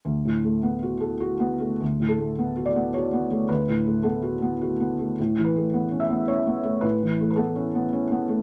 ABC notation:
X:1
M:3/4
L:1/16
Q:1/4=108
K:D
V:1 name="Felt piano"
z12 | z2 A4 d2 c4 | B4 A8 | z2 B4 e2 c4 |
B3- B/2 B/2 A8 |]
V:2 name="Felt piano"
(3D,,2 A,,2 A,2 (3B,2 F2 A2 (3F2 B,2 A,2 | (3D,,2 A,,2 A,2 (3B,2 F2 B,2 (3F2 B,2 A,2 | (3D,,2 A,,2 A,2 (3B,2 F2 B,2 (3F2 B,2 A,2 | (3A,,2 E,2 A,2 (3B,2 C2 B,2 (3C2 B,2 A,2 |
(3A,,2 E,2 A,2 (3B,2 C2 B,2 (3C2 B,2 A,2 |]